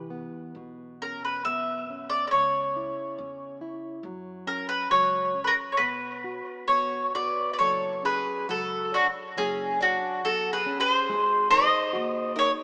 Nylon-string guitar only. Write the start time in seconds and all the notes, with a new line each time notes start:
Already playing: E3
0.10 B3
0.56 B2
1.02 C#4
1.46 B3
1.90 C#4
2.33 C#3
2.76 E4
3.19 C#4
3.61 E4
4.05 F#3
4.47 C#4
4.91 F#3
5.34 C#4
5.79 B3
6.24 F#4
6.69 B3
7.15 F#4
7.60 F#3
8.03 C#4
8.49 F#3
8.92 C#5
9.36 F#3
9.81 C#5
10.24 F#3
10.66 C#4
11.10 G#3
11.52 D#4
11.93 F#4
12.36 D#4